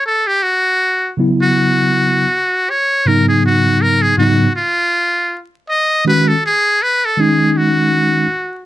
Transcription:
0.06 0.29 A4 medium
0.27 0.44 G4 medium
0.43 1.11 F#4 medium
1.17 2.24 C#3 medium
1.17 2.25 F#3 medium
1.17 2.25 B3 medium
1.17 2.26 E4 medium
1.41 2.71 F#4 medium
2.70 3.08 C#5 medium
3.06 4.12 G#2 medium
3.06 4.12 C#3 medium
3.06 4.13 F#3 medium
3.06 4.13 B3 medium
3.06 4.14 D#4 medium
3.06 3.28 A#4 medium
3.28 3.43 G#4 medium
3.45 3.83 F#4 medium
3.82 4.03 A#4 medium
4.02 4.17 G#4 medium
4.18 4.46 G#2 medium
4.18 4.46 C#3 medium
4.18 4.47 F#3 medium
4.18 4.47 B3 medium
4.18 4.47 D#4 medium
4.18 4.53 F#4 medium
4.56 5.39 F4 medium
5.69 6.04 D#5 medium
6.05 6.33 D#3 medium
6.05 6.34 G#3 medium
6.05 6.34 C#4 medium
6.05 6.35 F#4 medium
6.05 6.29 B4 loud
6.28 6.44 A4 medium
6.46 6.84 G#4 loud
6.82 7.07 B4 loud
7.05 7.22 A4 medium
7.17 8.24 D#3 medium
7.17 8.24 G#3 medium
7.17 8.25 C#4 medium
7.17 8.25 D#4 medium
7.17 7.53 G#4 medium
7.53 7.58 G#4 medium
7.57 8.66 F#4 medium

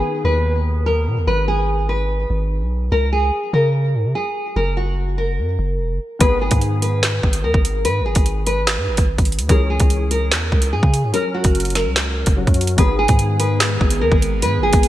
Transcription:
0.00 2.87 D#3 medium
0.00 2.88 B3 medium
0.00 0.22 G#4 medium
0.00 2.88 G#4 medium
0.25 1.08 D#2 loud
0.25 0.83 B4 medium
0.86 1.25 A#4 medium
1.07 1.19 B2 loud
1.17 1.27 D#2 loud
1.27 2.26 G#1 loud
1.27 1.44 B4 loud
1.48 1.87 G#4 medium
1.89 2.88 B4 medium
2.30 2.63 G#1 loud
2.61 2.90 B1 loud
2.92 3.31 C#2 loud
2.92 3.08 A#4 loud
3.13 3.51 G#4 medium
3.53 3.96 C#3 loud
3.53 4.11 A#4 medium
3.95 4.06 G#2 loud
4.05 4.15 C#3 loud
4.15 4.54 G#4 medium
4.56 5.40 F#1 loud
4.56 4.73 A#4 loud
4.77 5.15 F#4 medium
5.18 6.17 A#4 medium
5.38 5.58 F#2 loud
5.59 5.81 F#1 loud
5.79 5.91 E1 loud
5.90 6.00 F#1 loud
6.19 6.50 G#1 loud
6.19 9.45 D#3 medium
6.19 9.45 B3 medium
6.19 9.46 G#4 medium
6.19 6.37 B4 loud
6.19 kick loud
6.19 closed hi-hat medium
6.41 6.80 G#4 medium
6.51 7.20 G#2 loud
6.51 kick loud
6.51 closed hi-hat medium
6.61 closed hi-hat medium
6.82 7.40 B4 medium
6.82 closed hi-hat medium
7.03 snare loud
7.03 clap medium
7.03 closed hi-hat medium
7.23 7.45 G#1 loud
7.23 kick medium
7.33 closed hi-hat medium
7.44 7.54 D#2 loud
7.44 7.83 A#4 medium
7.54 7.86 G#1 loud
7.54 kick loud
7.65 closed hi-hat medium
7.85 8.02 G#2 loud
7.85 8.02 B4 loud
7.85 closed hi-hat medium
8.00 8.15 G#1 loud
8.06 8.44 G#4 medium
8.15 8.79 G#1 loud
8.15 kick loud
8.15 closed hi-hat medium
8.26 closed hi-hat medium
8.47 9.45 B4 medium
8.47 closed hi-hat medium
8.67 snare loud
8.67 clap medium
8.67 closed hi-hat medium
8.77 8.89 G#2 loud
8.88 8.97 G#1 loud
8.97 9.18 G#1 loud
8.97 kick loud
8.97 closed hi-hat medium
9.18 9.41 G#1 loud
9.18 kick loud
9.18 closed hi-hat medium
9.25 closed hi-hat medium
9.32 closed hi-hat medium
9.39 9.49 D#2 loud
9.39 closed hi-hat medium
9.48 9.79 C#2 loud
9.48 11.10 E3 medium
9.48 11.10 C#4 medium
9.48 11.11 G#4 medium
9.48 9.66 A#4 loud
9.48 kick loud
9.48 closed hi-hat medium
9.70 10.09 G#4 medium
9.80 10.33 C#2 loud
9.80 kick loud
9.80 closed hi-hat medium
9.90 closed hi-hat medium
10.11 10.69 A#4 medium
10.11 closed hi-hat medium
10.32 10.51 E2 loud
10.32 snare loud
10.32 clap medium
10.32 closed hi-hat medium
10.52 10.74 C#2 loud
10.52 kick medium
10.62 closed hi-hat medium
10.73 10.82 G#2 loud
10.73 11.11 G#4 medium
10.83 11.05 C#3 loud
10.83 kick loud
10.94 closed hi-hat medium
11.03 11.13 G#2 medium
11.13 12.34 F#3 medium
11.13 12.35 C#4 medium
11.13 11.30 A#4 loud
11.13 12.35 A#4 medium
11.13 closed hi-hat medium
11.34 11.73 F#4 medium
11.44 11.87 F#1 loud
11.44 kick loud
11.44 closed hi-hat medium
11.55 closed hi-hat medium
11.60 closed hi-hat medium
11.65 closed hi-hat medium
11.70 closed hi-hat medium
11.75 12.74 A#4 medium
11.75 snare medium
11.75 closed hi-hat medium
11.86 12.25 C#2 medium
11.96 snare loud
11.96 clap medium
11.96 closed hi-hat medium
12.26 12.46 F#1 loud
12.26 kick loud
12.26 closed hi-hat medium
12.36 12.78 F#3 medium
12.36 12.78 C#4 medium
12.36 12.78 F#4 medium
12.47 12.77 F#2 loud
12.47 kick loud
12.47 closed hi-hat soft
12.54 closed hi-hat medium
12.61 closed hi-hat medium
12.67 closed hi-hat medium
12.77 13.08 G#1 loud
12.77 14.88 D#3 medium
12.77 14.88 G#3 medium
12.77 14.88 B3 medium
12.77 14.88 G#4 medium
12.77 12.95 B4 loud
12.77 kick loud
12.77 closed hi-hat medium
12.99 13.37 G#4 medium
13.08 13.78 G#2 loud
13.08 kick loud
13.08 closed hi-hat medium
13.19 closed hi-hat medium
13.40 13.98 B4 medium
13.40 closed hi-hat medium
13.60 snare loud
13.60 clap medium
13.60 closed hi-hat medium
13.81 14.03 G#1 loud
13.81 kick medium
13.90 closed hi-hat medium
14.01 14.11 D#2 loud
14.01 14.40 A#4 medium
14.12 14.44 G#1 loud
14.12 kick loud
14.22 closed hi-hat medium
14.42 14.59 G#2 loud
14.42 14.59 B4 loud
14.42 closed hi-hat medium
14.58 14.72 G#1 loud
14.63 14.88 G#4 medium
14.73 14.88 G#1 loud
14.73 kick loud
14.73 closed hi-hat medium
14.83 closed hi-hat medium

